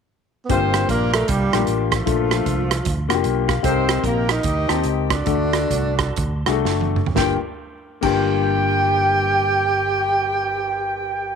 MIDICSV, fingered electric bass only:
0, 0, Header, 1, 2, 480
1, 0, Start_track
1, 0, Key_signature, -2, "minor"
1, 0, Tempo, 392927
1, 608, Time_signature, 4, 2, 24, 8
1, 4929, Tempo, 405954
1, 5889, Tempo, 431655
1, 6849, Tempo, 471328
1, 7809, Tempo, 511945
1, 8289, Tempo, 529568
1, 12085, End_track
2, 0, Start_track
2, 0, Title_t, "Fingered electric bass"
2, 0, Program_c, 0, 33
2, 610, Note_on_c, 0, 31, 87
2, 1017, Note_off_c, 0, 31, 0
2, 1085, Note_on_c, 0, 34, 71
2, 1494, Note_off_c, 0, 34, 0
2, 1575, Note_on_c, 0, 36, 83
2, 1828, Note_off_c, 0, 36, 0
2, 1877, Note_on_c, 0, 34, 73
2, 2025, Note_off_c, 0, 34, 0
2, 2049, Note_on_c, 0, 33, 79
2, 2456, Note_off_c, 0, 33, 0
2, 2529, Note_on_c, 0, 34, 85
2, 2936, Note_off_c, 0, 34, 0
2, 3005, Note_on_c, 0, 36, 71
2, 3414, Note_off_c, 0, 36, 0
2, 3495, Note_on_c, 0, 38, 75
2, 3747, Note_off_c, 0, 38, 0
2, 3788, Note_on_c, 0, 29, 64
2, 3940, Note_off_c, 0, 29, 0
2, 3969, Note_on_c, 0, 35, 80
2, 4376, Note_off_c, 0, 35, 0
2, 4449, Note_on_c, 0, 36, 95
2, 4859, Note_off_c, 0, 36, 0
2, 4931, Note_on_c, 0, 34, 72
2, 5334, Note_off_c, 0, 34, 0
2, 5411, Note_on_c, 0, 38, 70
2, 5665, Note_off_c, 0, 38, 0
2, 5713, Note_on_c, 0, 39, 60
2, 5865, Note_off_c, 0, 39, 0
2, 5894, Note_on_c, 0, 37, 89
2, 6292, Note_off_c, 0, 37, 0
2, 6358, Note_on_c, 0, 38, 85
2, 6775, Note_off_c, 0, 38, 0
2, 6843, Note_on_c, 0, 36, 73
2, 7244, Note_off_c, 0, 36, 0
2, 7321, Note_on_c, 0, 38, 72
2, 7579, Note_off_c, 0, 38, 0
2, 7621, Note_on_c, 0, 36, 65
2, 7780, Note_off_c, 0, 36, 0
2, 7806, Note_on_c, 0, 30, 82
2, 8216, Note_off_c, 0, 30, 0
2, 8289, Note_on_c, 0, 31, 79
2, 8457, Note_off_c, 0, 31, 0
2, 9069, Note_on_c, 0, 31, 70
2, 12085, Note_off_c, 0, 31, 0
2, 12085, End_track
0, 0, End_of_file